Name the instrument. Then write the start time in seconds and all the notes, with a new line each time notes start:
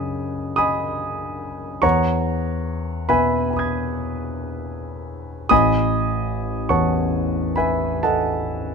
grand piano
Already playing: F#2 C#3 D#5 G#5 B5 D#6
0.56 D#5 G#5 B5 D#6
1.82 E2 C#5 F#5 A#5 C#6
3.09 B2 B4 E5 G#5 B5
3.50 G#5 B5
3.57 D#6 G#6
5.49 A1 D#5 G#5 B5 D#6
6.69 E2 C#5 F#5 A5 C#6
7.56 B4 E5 G#5 B5
8.03 A4 D#5 F#5 A5